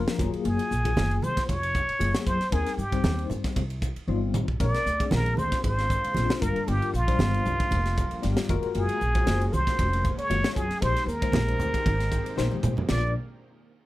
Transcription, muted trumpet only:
0.00 0.20 F4 loud
0.46 1.25 G#4 medium
1.23 1.50 C5 medium
1.49 2.26 C#5 loud
2.26 2.54 C5 medium
2.53 2.79 G#4 medium
2.78 3.30 G4 medium
4.62 5.15 D5 loud
5.13 5.40 A#4 loud
5.38 5.64 C5 medium
5.65 6.43 C5 medium
6.42 6.70 A#4 medium
6.69 6.97 G4 medium
6.96 8.50 F4 medium
8.77 9.55 G#4 medium
9.53 10.18 C5 loud
10.18 10.57 C#5 loud
10.56 10.84 G#4 medium
10.82 11.09 C5 loud
11.08 12.63 A#4 medium
12.89 13.13 D5 medium

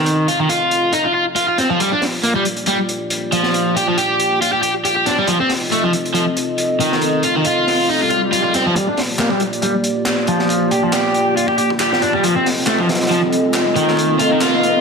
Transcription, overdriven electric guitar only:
0.00 0.27 D#3 medium
0.28 0.38 F4 medium
0.40 0.48 D#3 medium
0.49 0.92 F4 loud
0.93 1.04 D#4 medium
1.05 1.13 F4 medium
1.15 1.24 F4 medium
1.36 1.47 F4 loud
1.48 1.57 F4 medium
1.58 1.69 C4 medium
1.70 1.79 F3 loud
1.80 1.90 G3 medium
1.92 2.02 D4 loud
2.24 2.35 A#3 medium
2.35 2.44 G3 medium
2.67 2.77 G3 loud
3.33 3.75 F3 medium
3.76 3.86 G4 loud
3.88 3.96 F3 medium
3.98 4.40 G4 medium
4.42 4.53 F4 loud
4.53 4.61 G4 medium
4.63 4.72 G4 loud
4.85 4.95 G4 loud
4.96 5.05 G4 medium
5.06 5.17 D4 medium
5.18 5.28 G3 loud
5.28 5.37 F3 loud
5.40 5.49 C4 medium
5.71 5.83 A3 medium
5.83 5.91 F3 medium
6.14 6.24 F3 loud
6.80 7.23 D#3 medium
7.23 7.33 F4 medium
7.36 7.44 D#3 medium
7.45 7.88 F4 loud
7.89 8.00 D#4 loud
8.01 8.09 F4 medium
8.11 8.20 F4 loud
8.32 8.43 F4 loud
8.44 8.52 F4 medium
8.54 8.65 C4 medium
8.66 8.75 F3 loud
8.75 8.85 G3 loud
8.87 8.97 D4 loud
9.19 9.31 A#3 medium
9.31 9.39 G3 medium
9.63 9.72 G3 loud
10.28 10.71 F3 medium
10.71 10.81 G4 loud
10.83 10.91 F3 medium
10.93 11.36 G4 loud
11.36 11.48 F4 loud
11.48 11.57 G4 medium
11.58 11.68 G4 loud
11.80 11.91 G4 loud
11.92 12.00 G4 medium
12.02 12.13 D4 medium
12.13 12.23 G3 loud
12.24 12.33 F3 loud
12.36 12.45 C4 medium
12.68 12.79 A3 medium
12.80 12.87 F3 medium
13.11 13.20 F3 loud
13.76 14.18 D#3 medium
14.19 14.29 F4 loud
14.31 14.39 D#3 medium
14.41 14.81 F4 loud

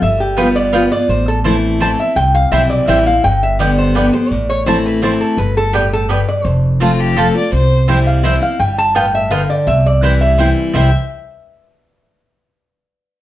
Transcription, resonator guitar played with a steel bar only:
0.02 0.20 E5 medium
0.20 0.37 G4 medium
0.37 0.56 B4 medium
0.56 0.73 D5 loud
0.73 0.91 B4 medium
0.92 1.09 D5 loud
1.09 1.27 C5 medium
1.28 1.38 A4 loud
1.82 1.99 A5 medium
2.00 2.16 E5 medium
2.16 2.34 G5 loud
2.35 2.51 F5 loud
2.52 2.69 E5 medium
2.70 2.87 D5 loud
2.88 3.06 E5 medium
3.07 3.23 F5 medium
3.24 3.42 G5 loud
3.43 3.59 E5 loud
3.60 3.78 D5 medium
3.78 3.95 C5 medium
3.95 4.13 B4 medium
4.13 4.30 C5 medium
4.30 4.49 D5 loud
4.49 4.66 C#5 loud
4.66 4.84 C5 medium
4.86 5.02 B4 medium
5.03 5.20 C5 medium
5.21 5.38 A4 medium
5.38 5.56 B4 loud
5.57 5.74 A4 loud
5.75 5.92 G4 medium
5.93 6.10 A4 medium
6.11 6.28 B4 medium
6.28 6.45 D5 medium
6.45 7.53 C5 medium
8.07 8.24 F5 medium
8.25 8.42 E5 medium
8.43 8.59 F5 medium
8.60 8.78 G5 medium
8.78 8.95 A5 loud
8.96 9.14 G5 medium
9.15 9.31 E5 medium
9.31 9.49 F5 medium
9.50 9.67 D5 medium
9.67 9.85 E5 medium
9.86 10.03 D5 loud
10.03 10.21 B4 medium
10.21 10.62 E5 medium
10.75 10.92 E5 medium

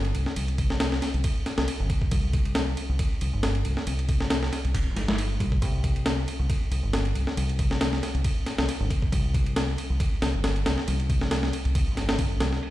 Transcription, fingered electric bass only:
0.00 0.12 G1 loud
0.15 0.24 C2 medium
0.36 0.99 C2 loud
1.14 1.22 C2 medium
1.58 1.66 C2 medium
1.80 1.88 G1 loud
2.12 2.74 C2 loud
2.89 2.97 C2 loud
3.22 3.31 C2 medium
3.33 3.62 G1 loud
3.65 3.75 C2 medium
3.87 4.49 C2 loud
4.65 4.97 C2 medium
4.96 5.37 G1 medium
5.40 5.58 C2 loud
5.62 6.25 C2 loud
6.39 6.48 C2 medium
6.71 6.81 C2 medium
6.83 7.12 G1 loud
7.15 7.25 C2 medium
7.37 8.00 C2 loud
8.14 8.23 C2 medium
8.58 8.66 C2 medium
8.80 8.88 G1 loud
9.12 9.75 C2 loud
9.90 9.98 C2 medium
10.22 10.31 C2 medium
10.34 10.63 G1 loud
10.66 10.75 C2 medium
10.88 11.50 C2 loud
11.65 11.97 C2 medium
11.97 12.38 G1 medium
12.41 12.59 C2 loud

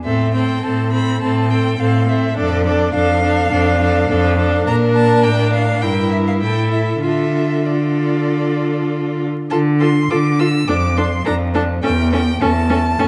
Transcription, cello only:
0.05 0.57 A2 medium
0.64 1.16 A2 soft
1.23 1.73 A2 medium
1.80 2.31 A2 soft
2.37 2.88 F2 medium
2.95 3.45 F2 medium
3.52 4.03 F2 medium
4.10 4.60 F2 medium
4.67 5.26 A#2 medium
5.25 5.85 A2 medium
5.83 6.43 G2 medium
6.42 7.03 A2 soft
7.03 9.27 D3 soft
9.52 10.04 D3 medium
10.11 10.62 D3 medium
10.68 11.20 F2 medium
11.26 11.77 F2 medium
11.84 12.35 E2 medium
12.42 12.93 E2 medium
13.00 13.08 E2 medium

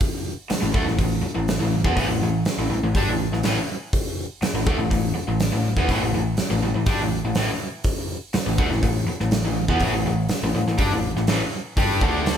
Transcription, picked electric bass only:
0.51 muted picked electric bass stroke soft
0.63 0.73 A1 medium
0.74 0.86 D2 medium
0.87 0.98 A1 medium
0.98 1.22 A1 medium
1.23 muted picked electric bass stroke soft
1.36 1.59 A1 medium
1.61 1.83 A1 medium
1.84 1.96 E2 medium
1.96 2.08 A1 medium
2.08 2.21 A1 medium
2.22 2.45 A1 medium
2.58 2.70 A1 medium
2.71 2.83 A1 medium
2.84 2.94 A1 medium
2.95 3.07 G2 medium
3.09 3.31 A1 medium
3.32 3.44 A1 medium
3.44 3.56 A1 medium
4.42 muted picked electric bass stroke soft
4.54 4.66 A1 medium
4.67 4.77 D2 medium
4.78 4.90 A1 medium
4.91 5.14 A1 medium
5.15 muted picked electric bass stroke soft
5.28 5.51 A1 medium
5.53 5.76 A1 medium
5.76 5.88 E2 medium
5.89 6.01 A1 medium
6.01 6.13 A1 medium
6.15 6.37 A1 medium
6.51 6.63 A1 medium
6.64 6.75 A1 medium
6.76 6.86 A1 medium
6.87 6.99 G2 medium
7.00 7.23 A1 medium
7.24 7.35 A1 medium
7.36 7.48 A1 medium
8.35 muted picked electric bass stroke soft
8.47 8.57 A1 medium
8.58 8.70 D2 medium
8.71 8.82 A1 medium
8.82 9.06 A1 medium
9.08 muted picked electric bass stroke soft
9.21 9.44 A1 medium
9.45 9.68 A1 medium
9.68 9.80 E2 medium
9.80 9.92 A1 medium
9.95 10.06 A1 medium
10.06 10.29 A1 medium
10.43 10.54 A1 medium
10.55 10.66 A1 medium
10.67 10.78 A1 medium
10.78 10.90 G2 medium
10.92 11.15 A1 medium
11.16 11.28 A1 medium
11.28 11.40 A1 medium
11.77 12.00 G2 medium
12.01 12.36 D2 medium

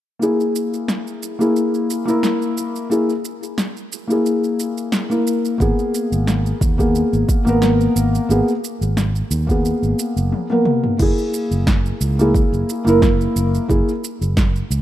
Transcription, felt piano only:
0.19 1.35 A#3 medium
0.19 1.36 E4 medium
0.19 1.37 G#4 medium
1.39 2.03 A#3 medium
1.39 2.03 E4 medium
1.39 2.04 G#4 medium
2.05 2.86 A#3 medium
2.05 2.87 E4 medium
2.09 2.88 A#4 medium
2.90 3.11 A#3 medium
2.90 3.11 E4 medium
2.90 3.12 G#4 medium
4.08 5.06 A#3 medium
4.08 5.07 E4 medium
4.12 5.08 G#4 medium
5.10 5.56 A#3 medium
5.10 5.57 E4 medium
5.10 5.57 A#4 medium
5.58 6.74 A#3 medium
5.58 6.75 B3 medium
5.58 6.76 G#4 medium
6.78 7.42 A#3 medium
6.78 7.43 B3 medium
6.78 7.43 G#4 medium
7.45 8.25 A#3 medium
7.45 8.26 B3 medium
7.45 8.27 A#4 loud
8.29 8.50 A#3 medium
8.29 8.50 B3 medium
8.29 8.51 G#4 medium
9.47 10.45 A#3 medium
9.47 10.46 B3 medium
9.51 10.47 G#4 medium
10.50 10.96 A#3 medium
10.50 10.96 B3 medium
10.50 10.97 A#4 medium
10.98 12.14 A#3 medium
10.98 12.15 E4 medium
10.98 12.16 G#4 medium
12.19 12.82 A#3 medium
12.19 12.83 E4 medium
12.19 12.83 G#4 medium
12.85 13.65 A#3 medium
12.85 13.66 E4 medium
12.89 13.67 A#4 loud
13.68 13.89 A#3 medium
13.68 13.90 E4 medium
13.68 13.90 G#4 medium

